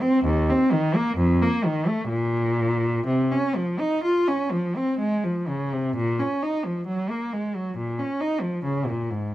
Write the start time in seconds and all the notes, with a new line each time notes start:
0.01 C4
0.24 D#2
0.50 C4
0.72 D#3
0.96 A#3
1.17 F2
1.42 A#3
1.65 D#3
1.88 A3
2.09 A#2
3.06 C3
3.31 C#4
3.56 F3
3.79 D#4
4.04 F4
4.28 C#4
4.51 F3
4.77 C4
4.99 G#3
5.24 F3
5.48 C#3
5.73 C3
5.96 A#2
6.19 C#4
6.43 D#4
6.65 F3
6.87 F#3
7.10 A#3
7.33 G#3
7.56 F#3
7.77 A#2
7.99 C#4
8.21 D#4
8.41 F3
8.64 C#3
8.86 A#2
9.11 G#2